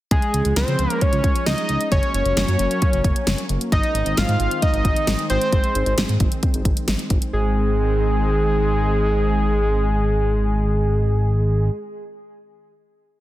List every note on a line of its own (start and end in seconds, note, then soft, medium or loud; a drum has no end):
0.11 0.19 C#2 loud
0.11 1.90 F3 medium
0.11 1.90 G#3 medium
0.11 1.90 C#4 medium
0.11 0.53 G#4 medium
0.11 kick loud
0.11 closed hi-hat medium
0.22 closed hi-hat soft
0.34 0.42 C#2 medium
0.34 closed hi-hat medium
0.45 0.53 C#2 medium
0.45 closed hi-hat medium
0.56 0.65 C#2 loud
0.56 0.91 C5 medium
0.56 snare loud
0.56 closed hi-hat medium
0.68 0.76 C#3 medium
0.68 closed hi-hat soft
0.79 0.87 C#2 loud
0.79 closed hi-hat medium
0.90 1.03 A#4 medium
0.90 closed hi-hat medium
1.01 1.46 C#5 loud
1.01 kick medium
1.01 closed hi-hat medium
1.13 1.21 C#2 loud
1.13 closed hi-hat medium
1.24 1.32 C#2 medium
1.24 kick loud
1.24 closed hi-hat medium
1.36 closed hi-hat medium
1.46 1.55 C#2 loud
1.46 1.88 D#5 loud
1.46 snare loud
1.46 closed hi-hat medium
1.58 closed hi-hat soft
1.69 1.77 C#2 loud
1.69 closed hi-hat medium
1.81 closed hi-hat medium
1.92 2.00 F#1 loud
1.92 3.70 F#3 medium
1.92 3.70 A#3 medium
1.92 3.70 C#4 medium
1.92 2.13 C#5 loud
1.92 kick loud
1.92 closed hi-hat medium
2.03 closed hi-hat soft
2.14 2.22 F#1 medium
2.14 3.46 C#5 loud
2.14 closed hi-hat medium
2.26 2.34 F#1 loud
2.26 closed hi-hat medium
2.37 2.45 F#1 loud
2.37 snare loud
2.37 closed hi-hat medium
2.48 2.56 F#2 medium
2.48 closed hi-hat soft
2.59 2.68 F#1 medium
2.59 closed hi-hat medium
2.71 closed hi-hat medium
2.82 kick medium
2.82 closed hi-hat medium
2.93 3.01 F#1 medium
2.93 closed hi-hat medium
3.04 3.13 F#1 medium
3.04 kick loud
3.04 closed hi-hat medium
3.16 closed hi-hat medium
3.27 3.35 F#1 loud
3.27 snare loud
3.27 closed hi-hat medium
3.38 closed hi-hat soft
3.49 3.58 F#1 loud
3.49 closed hi-hat medium
3.61 closed hi-hat medium
3.72 3.80 G#1 loud
3.72 7.29 D#3 medium
3.72 7.29 G#3 medium
3.72 7.29 C4 medium
3.72 4.19 D#5 loud
3.72 kick loud
3.72 closed hi-hat medium
3.83 closed hi-hat soft
3.95 4.03 G#1 loud
3.95 closed hi-hat medium
4.06 4.14 G#1 loud
4.06 closed hi-hat medium
4.17 4.25 G#1 loud
4.17 4.62 F5 loud
4.17 snare loud
4.17 closed hi-hat medium
4.29 4.37 G#2 medium
4.29 closed hi-hat soft
4.40 4.48 G#1 loud
4.40 closed hi-hat medium
4.51 closed hi-hat medium
4.62 5.26 D#5 loud
4.62 kick medium
4.62 closed hi-hat medium
4.74 4.82 G#1 loud
4.74 closed hi-hat medium
4.85 4.93 G#1 loud
4.85 kick loud
4.85 closed hi-hat medium
4.96 closed hi-hat medium
5.07 5.16 G#1 loud
5.07 snare loud
5.07 closed hi-hat medium
5.19 closed hi-hat soft
5.30 5.38 G#1 loud
5.30 5.94 C5 medium
5.30 closed hi-hat medium
5.41 closed hi-hat medium
5.53 5.61 G#1 loud
5.53 kick loud
5.53 closed hi-hat medium
5.64 closed hi-hat soft
5.75 5.83 G#1 loud
5.75 closed hi-hat medium
5.86 5.95 G#1 loud
5.86 closed hi-hat medium
5.98 6.06 G#1 loud
5.98 snare loud
5.98 closed hi-hat medium
6.09 6.17 G#2 medium
6.09 closed hi-hat soft
6.20 6.28 G#1 loud
6.20 kick medium
6.20 closed hi-hat medium
6.32 closed hi-hat medium
6.43 kick medium
6.43 closed hi-hat medium
6.54 6.62 G#1 medium
6.54 closed hi-hat medium
6.65 6.73 G#1 loud
6.65 kick loud
6.65 closed hi-hat medium
6.77 closed hi-hat medium
6.88 6.96 G#1 loud
6.88 snare loud
6.88 closed hi-hat medium
6.99 closed hi-hat soft
7.10 7.19 G#1 loud
7.10 kick medium
7.10 closed hi-hat medium
7.22 closed hi-hat medium
7.33 11.70 G#1 loud
7.33 11.70 D#3 medium
7.33 11.70 G#3 medium
7.33 11.70 C4 medium
7.33 11.70 G#4 medium